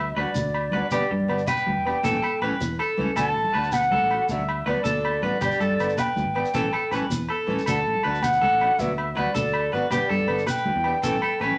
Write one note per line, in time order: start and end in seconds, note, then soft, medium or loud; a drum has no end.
0.00 0.12 D2 medium
0.00 0.14 E5 medium
0.16 0.25 D2 medium
0.16 0.27 F#3 medium
0.16 0.29 D4 medium
0.16 0.29 F#4 medium
0.16 0.34 B4 medium
0.16 0.87 D5 loud
0.16 low conga soft
0.16 low agogo medium
0.25 low conga medium
0.34 0.68 D2 medium
0.34 high conga medium
0.34 shekere medium
0.54 low agogo medium
0.72 0.81 D2 medium
0.72 0.84 F#3 medium
0.72 0.85 B3 medium
0.72 0.85 D4 medium
0.72 0.91 B4 medium
0.72 low conga loud
0.76 0.86 F#4 medium
0.91 1.00 G1 medium
0.91 1.03 B3 medium
0.91 1.04 D4 medium
0.91 1.09 G4 medium
0.91 1.04 G4 medium
0.91 1.49 D5 medium
0.91 high conga medium
0.91 low agogo medium
0.91 shekere medium
1.11 1.27 G2 medium
1.11 muted clean electric guitar stroke medium
1.20 low conga medium
1.28 1.46 G1 medium
1.28 1.40 B3 medium
1.28 1.41 D4 medium
1.28 1.42 G4 medium
1.28 low agogo medium
1.38 shekere soft
1.47 1.83 B4 medium
1.47 2.60 G5 medium
1.47 high conga medium
1.47 low agogo medium
1.47 shekere medium
1.57 low conga soft
1.57 shekere soft
1.66 1.75 D2 medium
1.66 low conga loud
1.76 1.93 E1 loud
1.85 1.96 B3 medium
1.85 1.97 D4 medium
1.85 1.98 G4 medium
1.85 low agogo medium
2.03 2.21 A1 medium
2.03 2.15 E3 medium
2.03 2.16 A3 medium
2.03 2.16 C#4 medium
2.03 2.21 A4 medium
2.03 2.16 A4 medium
2.03 high conga medium
2.03 shekere medium
2.13 low conga medium
2.22 2.40 A4 medium
2.22 low agogo medium
2.42 2.50 A1 medium
2.42 2.53 E3 medium
2.42 2.54 A3 medium
2.42 2.54 C#4 medium
2.42 2.77 B4 medium
2.42 muted steel-string acoustic guitar stroke medium
2.42 low conga soft
2.42 low agogo medium
2.51 low conga medium
2.60 2.77 E2 medium
2.60 high conga medium
2.60 shekere medium
2.79 3.15 A4 medium
2.79 low agogo medium
2.97 3.07 C#2 medium
2.97 3.09 E3 medium
2.97 3.10 A3 medium
2.97 3.10 C#4 medium
2.97 3.11 A4 medium
2.97 low conga medium
3.16 3.33 D2 medium
3.16 3.28 A3 medium
3.16 3.29 D4 medium
3.16 3.29 F#4 medium
3.16 3.52 A4 medium
3.16 3.74 A5 loud
3.16 high conga medium
3.16 low agogo medium
3.16 shekere medium
3.36 3.44 A1 medium
3.44 low conga medium
3.54 3.88 D2 medium
3.54 3.65 A3 medium
3.54 3.66 D4 medium
3.54 3.67 F#4 medium
3.54 3.90 B4 medium
3.54 low agogo medium
3.64 shekere soft
3.72 4.29 F#5 loud
3.72 high conga loud
3.72 low agogo medium
3.72 shekere medium
3.82 low conga soft
3.82 shekere soft
3.91 4.00 C#2 medium
3.91 4.27 A4 medium
3.91 low conga medium
4.02 4.18 A1 medium
4.10 4.22 A3 medium
4.10 4.24 F#4 medium
4.10 low agogo medium
4.29 4.63 D2 loud
4.29 4.41 F#3 medium
4.29 4.41 D4 medium
4.29 4.42 F#4 medium
4.29 4.65 E5 medium
4.29 muted steel-string acoustic guitar stroke medium
4.29 high conga medium
4.29 shekere medium
4.38 low conga medium
4.49 low agogo medium
4.66 4.75 D2 medium
4.66 4.78 F#3 medium
4.66 4.78 B3 medium
4.66 4.79 D4 medium
4.66 4.79 F#4 medium
4.66 4.83 B4 medium
4.66 5.38 D5 loud
4.66 low agogo medium
4.76 low conga medium
4.84 5.19 D2 medium
4.84 5.20 A4 medium
4.84 high conga medium
4.84 shekere medium
5.05 low agogo medium
5.22 5.31 A1 medium
5.22 5.34 F#3 medium
5.22 5.35 B3 medium
5.22 5.35 D4 medium
5.22 5.36 F#4 medium
5.22 5.41 B4 medium
5.22 low conga medium
5.41 5.50 G1 medium
5.41 5.54 D4 medium
5.41 5.59 G4 medium
5.41 5.54 G4 medium
5.41 6.01 D5 medium
5.41 muted steel-string acoustic guitar stroke medium
5.41 high conga medium
5.41 low conga soft
5.41 low agogo medium
5.41 shekere medium
5.50 low conga soft
5.50 shekere soft
5.59 5.77 G2 medium
5.59 5.96 A4 medium
5.59 low conga soft
5.59 shekere soft
5.69 low conga medium
5.78 5.96 G1 medium
5.78 5.91 B3 medium
5.78 low conga soft
5.78 low agogo medium
5.78 shekere soft
5.82 5.92 D4 medium
5.82 5.93 G4 medium
5.89 shekere soft
5.97 6.34 B4 medium
5.97 7.11 G5 medium
5.97 high conga loud
5.97 low conga soft
5.97 low agogo medium
5.97 shekere medium
6.16 6.25 D2 medium
6.16 low conga medium
6.16 shekere soft
6.25 6.42 G#1 medium
6.25 low conga soft
6.35 6.47 B3 medium
6.35 6.47 D4 medium
6.35 6.48 G4 medium
6.35 low agogo medium
6.45 low conga soft
6.45 shekere soft
6.54 6.71 A1 medium
6.54 6.65 E3 medium
6.54 6.66 A3 medium
6.54 6.66 C#4 medium
6.54 6.72 A4 medium
6.54 6.67 A4 medium
6.54 high conga medium
6.54 low conga soft
6.54 shekere medium
6.64 low conga medium
6.73 6.91 A4 medium
6.73 low conga soft
6.73 low agogo medium
6.91 7.00 A1 medium
6.91 7.03 E3 medium
6.91 7.04 A3 medium
6.91 7.04 C#4 medium
6.91 7.05 A4 medium
6.91 7.28 B4 medium
6.91 low conga soft
6.91 low agogo medium
6.91 shekere soft
7.01 low conga medium
7.10 7.27 E2 medium
7.10 high conga medium
7.10 shekere loud
7.20 low conga soft
7.29 7.65 A4 medium
7.29 low agogo medium
7.47 7.57 A1 medium
7.47 7.59 E3 medium
7.47 7.60 A3 medium
7.47 7.60 C#4 medium
7.47 7.60 A4 medium
7.47 low conga medium
7.59 shekere soft
7.66 7.84 D2 medium
7.66 7.78 F#3 medium
7.66 7.78 A3 medium
7.66 7.79 D4 medium
7.66 7.79 F#4 medium
7.66 8.03 A4 medium
7.66 8.24 A5 loud
7.66 high conga medium
7.66 low agogo medium
7.66 shekere loud
7.86 7.94 A1 medium
7.95 low conga medium
8.03 8.38 D2 medium
8.03 8.15 F#3 medium
8.03 8.16 A3 medium
8.03 8.16 D4 soft
8.03 8.16 F#4 medium
8.03 8.40 B4 medium
8.03 low agogo medium
8.15 shekere soft
8.22 8.81 F#5 loud
8.22 high conga loud
8.22 low agogo medium
8.22 shekere medium
8.32 low conga soft
8.32 shekere soft
8.41 8.50 C#2 loud
8.41 8.77 A4 medium
8.41 low conga medium
8.51 8.68 A1 medium
8.60 8.72 F#3 medium
8.60 8.72 A3 medium
8.60 8.73 D4 medium
8.60 8.73 F#4 medium
8.60 low conga soft
8.60 low agogo medium
8.78 9.13 D2 medium
8.78 8.90 F#3 medium
8.78 8.91 B3 medium
8.78 8.91 D4 medium
8.78 8.91 F#4 medium
8.78 9.20 E5 loud
8.78 high conga medium
8.78 shekere medium
8.87 low conga medium
8.98 low agogo medium
9.15 9.25 D2 medium
9.15 9.27 F#3 medium
9.15 9.28 B3 medium
9.15 9.29 D4 medium
9.15 9.29 F#4 medium
9.15 9.34 B4 medium
9.15 9.93 D5 loud
9.15 low conga soft
9.15 low agogo medium
9.26 low conga medium
9.35 9.69 D2 medium
9.35 9.71 A4 medium
9.35 high conga medium
9.35 shekere loud
9.53 low conga soft
9.53 low agogo medium
9.72 9.82 G#1 medium
9.72 9.84 F#3 medium
9.72 9.85 B3 medium
9.72 9.85 D4 medium
9.72 9.85 F#4 medium
9.72 9.91 B4 medium
9.90 10.00 G1 medium
9.90 10.03 B3 medium
9.90 10.03 D4 medium
9.90 10.10 G4 medium
9.90 10.04 G4 medium
9.90 10.45 D5 medium
9.90 high conga medium
9.90 low agogo medium
9.90 shekere loud
10.09 10.27 G2 medium
10.09 10.46 A4 medium
10.19 low conga medium
10.27 10.45 G1 medium
10.27 10.40 B3 medium
10.27 10.41 D4 medium
10.27 10.41 G4 medium
10.27 low agogo medium
10.38 shekere soft
10.47 10.83 B4 medium
10.47 11.57 G5 medium
10.47 high conga medium
10.47 low agogo medium
10.47 shekere medium
10.56 low conga soft
10.56 shekere soft
10.65 10.74 D2 medium
10.65 low conga medium
10.76 10.93 E2 loud
10.84 10.96 B3 medium
10.84 10.97 D4 medium
10.84 10.98 G4 medium
10.84 low conga soft
10.84 low agogo medium
11.03 11.20 A1 medium
11.03 11.15 E3 medium
11.03 11.15 A3 medium
11.03 11.16 C#4 medium
11.03 11.21 A4 medium
11.03 11.16 A4 loud
11.03 high conga medium
11.03 shekere loud
11.13 low conga medium
11.22 11.40 A4 medium
11.22 low agogo medium
11.40 11.49 A1 medium
11.40 11.53 A3 medium
11.40 11.53 C#4 medium
11.40 11.54 A4 medium
11.40 11.58 B4 medium
11.40 muted steel-string acoustic guitar stroke medium
11.40 low agogo medium
11.51 low conga medium